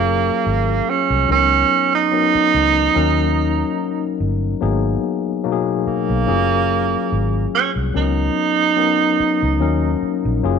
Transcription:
Already playing: fingered electric bass F#1, tine electric piano F#3 A#3 C#4 F4 G#4, tenor saxophone A#3
0.46 fingered electric bass G#1
0.90 tenor saxophone C#4
1.10 fingered electric bass C2
1.28 fingered electric bass C#2, tine electric piano F#3 B3 C#4 D#4 A#4, tenor saxophone C#4
1.95 tenor saxophone D#4
2.12 tine electric piano F#3 B3 C#4 D#4 A#4
2.35 muted fingered electric bass stroke
2.54 fingered electric bass C#2
2.94 fingered electric bass D#2, tine electric piano F#3 A#3 C#4 D#4 A#4
4.20 fingered electric bass G1
4.61 fingered electric bass G#1, tine electric piano F#3 A#3 B3 D#4 G#4
5.44 tine electric piano B2 F#3 A#3 D#4 F#4
5.52 tine electric piano G#4
5.87 tenor saxophone A#3, muted fingered electric bass stroke
6.10 fingered electric bass B1
6.27 fingered electric bass F#1, tine electric piano F#3 A3 C#4 F4 G#4
6.33 tine electric piano A#3
7.12 fingered electric bass G#1
7.55 tenor saxophone C#4
7.76 fingered electric bass C2
7.94 fingered electric bass C#2, tine electric piano F#3 B3 C#4 D#4 A#4, tenor saxophone D#4
8.76 tine electric piano F#3 B3 C#4 D#4 A#4
9.20 muted fingered electric bass stroke
9.43 fingered electric bass C#2
9.60 fingered electric bass D#2, tine electric piano F#3 A#3 C#4 D#4 A#4
10.02 muted fingered electric bass stroke
10.25 fingered electric bass A#1
10.43 fingered electric bass F#1, tine electric piano F#3 A#3 C#4 F4 G#4

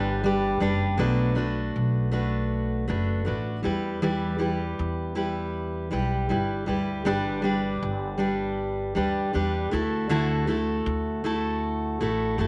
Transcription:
Already playing: upright bass G1, steel-string acoustic guitar G3 D4 G4 B4, felt piano G4 B4 D5
0.24 steel-string acoustic guitar G3 D4 G4 B4
0.60 upright bass F#1, steel-string acoustic guitar G3 D4 G4 B4
0.97 upright bass B1, steel-string acoustic guitar B2 F#3 A3 D4 F#4 B4
1.35 steel-string acoustic guitar A3 D4 F#4 B4
1.76 upright bass B1
2.12 steel-string acoustic guitar A3 D4 F#4 B4
2.88 upright bass F#1, steel-string acoustic guitar A3 D4 F#4 B4
3.25 upright bass A1, steel-string acoustic guitar A3 D4 F#4 B4
3.63 upright bass E2, steel-string acoustic guitar G3 E4 G4 B4
4.02 steel-string acoustic guitar E3 G3 E4 G4 B4
4.38 steel-string acoustic guitar G3 E4 G4 B4
4.79 upright bass E2
5.15 steel-string acoustic guitar G3 E4 G4 B4
5.91 upright bass B1, steel-string acoustic guitar G3 E4 G4 B4
6.29 upright bass G1, steel-string acoustic guitar G3 E4 G4 B4
6.66 upright bass D2, steel-string acoustic guitar G3 E4 G4 B4
7.05 upright bass G1, steel-string acoustic guitar G3 D4 G4 B4
7.42 steel-string acoustic guitar G3 D4 G4 B4
7.83 upright bass G1
8.18 steel-string acoustic guitar G3 D4 G4 B4
8.95 upright bass D2, steel-string acoustic guitar G3 D4 G4 B4
9.33 upright bass E2, steel-string acoustic guitar G3 D4 G4 B4
9.71 upright bass D2, steel-string acoustic guitar A3 E4 F#4 A4
10.09 steel-string acoustic guitar D3 A3 E4 F#4 A4
10.47 steel-string acoustic guitar A3 E4 F#4 A4
10.86 upright bass D2
11.24 steel-string acoustic guitar A3 E4 F#4 A4
12.00 upright bass A1, steel-string acoustic guitar A3 E4 F#4 A4
12.38 upright bass F#1, steel-string acoustic guitar A3 E4 F#4 A4

